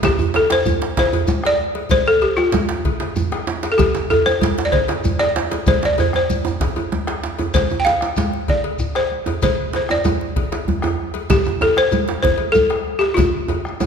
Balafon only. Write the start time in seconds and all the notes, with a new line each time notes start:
0.05 G4
0.36 A4
0.52 C5
0.99 C5
1.46 D5
1.91 C5
2.08 A4
2.22 G4
2.37 F4
3.72 A4
3.78 G4
4.10 A4
4.26 C5
4.65 D5
4.72 C5
5.19 D5
5.68 C5
5.85 D5
6.00 C5
6.16 C5
7.54 C5
7.80 G5
7.85 F5
8.50 D5
8.96 C5
9.43 C5
9.76 C5
9.91 D5
11.30 G4
11.62 A4
11.78 C5
12.23 C5
12.52 A4
12.99 G4
13.14 F4